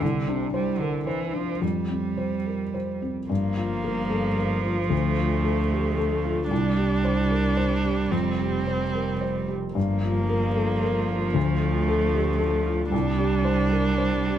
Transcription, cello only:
0.02 0.30 D3 soft
0.28 0.53 C3 soft
0.54 0.82 G3 medium
0.80 1.07 D3 medium
1.07 1.35 E3 soft
1.34 1.63 F3 soft
1.62 3.09 G3 soft
3.29 6.46 F3 soft
6.50 9.51 G3 medium
9.75 12.88 F3 soft
12.92 14.38 G3 medium

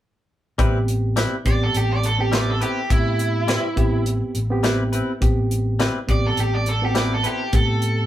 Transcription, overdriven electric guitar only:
1.47 1.62 D5 medium
1.63 1.77 A4 medium
1.77 1.91 G4 medium
1.92 2.04 D5 medium
2.06 2.20 A4 medium
2.20 2.33 G4 medium
2.34 2.49 D5 medium
2.50 2.62 A4 medium
2.63 2.90 G4 medium
2.91 4.03 E4 medium
6.11 6.25 D5 medium
6.27 6.40 A4 medium
6.40 6.54 G4 medium
6.55 6.67 D5 medium
6.69 6.85 A4 medium
6.85 6.96 G4 medium
6.98 7.12 D5 medium
7.14 7.25 A4 medium
7.27 7.54 G4 medium
7.55 8.06 A4 medium

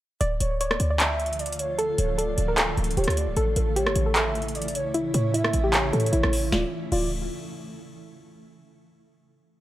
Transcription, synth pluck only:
0.21 0.58 D5 loud
0.61 0.89 C#5 medium
0.90 0.98 D5 medium
1.00 1.75 D5 medium
1.78 2.16 A4 loud
2.18 2.47 A4 medium
2.48 2.55 A#4 medium
2.58 2.95 A4 medium
2.97 3.34 G4 medium
3.37 3.74 A4 loud
3.76 4.05 G4 loud
4.06 4.13 A4 medium
4.15 4.90 A4 medium
4.94 5.32 E4 loud
5.34 5.62 E4 medium
5.64 5.91 G4 medium
5.93 6.08 A4 medium
6.12 6.28 E4 medium
6.52 6.64 F4 medium
6.92 7.10 F4 medium

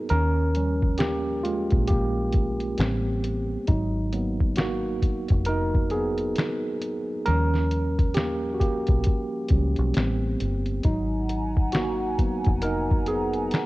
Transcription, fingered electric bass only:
0.11 1.68 D#2 loud
1.73 2.75 A#1 medium
2.79 3.56 A1 loud
3.69 5.26 G#1 loud
5.31 6.33 F1 medium
7.28 8.85 D#2 medium
8.89 9.04 B1 medium
9.51 9.74 C#2 medium
9.79 9.93 B1 medium
9.97 10.35 A1 medium
10.41 10.79 G1 medium
10.85 12.43 G#1 loud
12.47 13.50 F1 medium

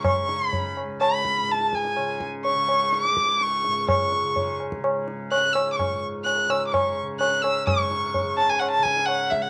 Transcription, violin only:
0.05 0.50 C#6 medium
0.50 0.73 B5 medium
1.01 1.53 B5 medium
1.51 1.76 A5 medium
1.75 2.22 G#5 medium
2.45 2.95 C#6 medium
2.94 3.43 D6 medium
3.42 3.89 C#6 medium
3.89 4.56 C#6 medium
5.32 5.54 F#6 medium
5.53 5.72 E6 medium
5.72 5.78 D6 medium
5.76 6.01 C#6 medium
6.25 6.51 F#6 medium
6.50 6.66 E6 medium
6.67 6.75 D6 medium
6.73 6.97 C#6 medium
7.20 7.43 F#6 medium
7.42 7.66 E6 medium
7.67 8.34 C#6 medium
8.37 8.51 A5 loud
8.50 8.61 G#5 medium
8.60 8.70 F#5 medium
8.71 8.85 A5 loud
8.83 9.07 G#5 loud
9.06 9.32 F#5 medium
9.30 9.44 E5 medium
9.42 9.50 F#5 medium

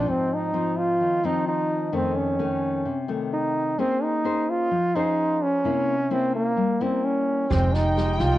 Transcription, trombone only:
0.00 0.11 D4 medium
0.10 0.36 C4 medium
0.34 0.80 D#4 loud
0.78 1.27 F4 loud
1.26 1.47 D#4 medium
1.49 1.96 D#4 medium
1.94 2.18 C4 medium
2.17 3.09 C#4 medium
3.34 3.81 D#4 medium
3.79 4.04 C4 loud
4.03 4.51 D#4 loud
4.50 4.97 F4 loud
4.96 5.45 D#4 loud
5.43 6.14 C#4 loud
6.12 6.35 C4 medium
6.35 6.84 A#3 medium
6.82 7.06 C4 medium
7.04 7.53 C#4 medium
7.51 7.76 C4 medium
7.74 8.23 D#4 medium
8.21 8.38 F4 medium

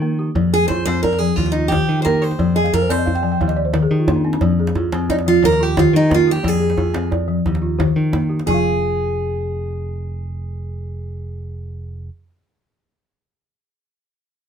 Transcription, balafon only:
0.00 0.36 A#3 medium
0.00 0.18 G4 medium
0.00 0.53 A#4 medium
0.19 0.53 G4 medium
0.36 0.70 F3 medium
0.53 1.04 G#4 medium
0.70 1.21 F4 medium
0.87 1.21 C4 medium
1.04 1.55 D5 medium
1.20 1.38 F3 medium
1.54 2.05 F4 medium
1.71 2.05 D#3 medium
1.71 2.20 G4 medium
2.05 2.39 A#3 medium
2.05 2.56 A#4 medium
2.22 2.56 G4 medium
2.39 2.73 F3 medium
2.55 2.71 D#5 medium
2.64 2.80 F5 medium
2.73 2.88 A#4 medium
2.82 2.97 C5 medium
2.89 3.23 C4 medium
2.89 3.05 D5 medium
2.98 3.14 D#5 medium
3.06 3.22 F5 medium
3.15 3.31 G5 medium
3.23 3.40 F3 medium
3.23 3.39 G#5 medium
3.32 3.48 G5 medium
3.41 3.56 F5 medium
3.48 3.64 D#5 medium
3.56 3.73 D5 medium
3.65 3.81 C5 medium
3.73 4.08 D#3 medium
3.73 3.89 A#4 medium
3.82 3.98 G#4 medium
3.91 4.07 G4 medium
4.00 4.15 F4 medium
4.08 4.42 A#3 medium
4.08 4.24 D#4 medium
4.16 4.32 D4 medium
4.25 4.41 C4 medium
4.33 4.49 D4 medium
4.42 4.76 F3 medium
4.59 5.10 G#4 medium
4.76 5.27 F4 medium
4.93 5.26 C4 medium
5.10 5.60 D5 medium
5.26 5.43 F3 medium
5.60 6.11 F4 medium
5.77 6.11 D#3 medium
5.77 6.26 G4 medium
6.10 6.44 A#3 medium
6.10 6.61 A#4 medium
6.27 6.61 G4 medium
6.43 6.77 F3 medium
6.60 7.11 G#4 medium
6.77 7.28 F4 medium
6.94 7.28 C4 medium
7.11 7.62 D5 medium
7.28 7.45 F3 medium
7.62 8.13 F4 medium
7.79 8.13 D#3 medium
7.79 8.28 G4 medium
8.13 8.47 A#3 medium
8.13 8.63 A#4 medium
8.29 8.63 G4 medium
8.46 12.12 F3 medium
8.46 12.16 F4 medium
8.54 12.20 F5 medium

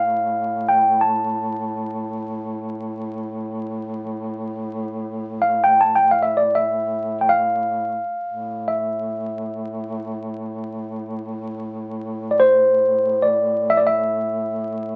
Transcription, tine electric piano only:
0.00 0.72 F5 medium
0.69 1.01 G5 medium
1.01 4.02 A5 medium
5.42 5.63 F5 medium
5.64 5.82 G5 medium
5.81 5.96 A5 medium
5.95 6.10 G5 medium
6.11 6.23 F5 medium
6.23 6.39 E5 medium
6.37 6.56 D5 medium
6.55 7.18 E5 medium
7.21 7.31 G5 soft
7.29 8.72 F5 medium
8.68 11.25 E5 medium
12.31 12.40 D5 soft
12.40 13.24 C5 medium
13.22 13.71 D5 medium
13.70 13.78 E5 medium
13.77 13.86 D5 medium
13.87 14.96 E5 medium

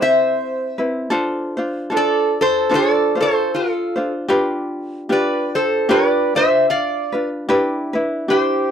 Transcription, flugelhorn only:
0.00 0.76 C5 medium
1.95 2.36 A4 loud
2.41 2.72 A4 medium
2.76 3.16 A4 loud
3.22 3.52 A4 medium
3.54 4.11 F4 medium
5.11 5.53 B4 medium
5.58 5.89 A4 medium
5.91 6.32 B4 loud
6.36 6.67 C5 medium
6.69 7.27 D5 medium
8.30 8.71 G4 medium

